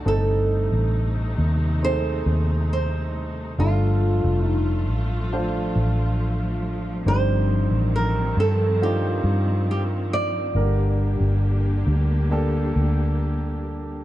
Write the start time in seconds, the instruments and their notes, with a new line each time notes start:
0.05 fingered electric bass G1, grand piano G2 A3 C4 D#4 A4, string section C3 A3 D#4, nylon-string guitar A4
0.72 fingered electric bass A1
1.38 fingered electric bass D#2
1.82 grand piano A3 C4 D#4 G#4, nylon-string guitar C5
1.90 grand piano A4
2.26 fingered electric bass D#2
2.73 nylon-string guitar C5
3.57 fingered electric bass G1, grand piano G2 A3 D4 F4 A4, string section F3 A3 F4, nylon-string guitar F4
4.24 fingered electric bass F1
4.46 nylon-string guitar D#4
4.89 fingered electric bass A1
5.32 grand piano A3 D4 F4 C5
5.76 fingered electric bass A1
7.06 fingered electric bass G1, grand piano G2 G3 C4 D4 D#4 G4, string section D#3 C4, nylon-string guitar C5
7.71 fingered electric bass A1
7.96 nylon-string guitar A#4
8.37 fingered electric bass G2, nylon-string guitar A4
8.81 grand piano C4 D4 D#4 F4, nylon-string guitar G4
9.24 fingered electric bass G2
9.71 nylon-string guitar G4
10.13 nylon-string guitar D5
10.54 fingered electric bass G1, grand piano G2 D3 A#3 D4 G4 A#4, string section D3 A#3 G4
11.20 fingered electric bass G1
11.87 fingered electric bass D2
12.31 grand piano A#3 D4 G4 A4
12.76 fingered electric bass D2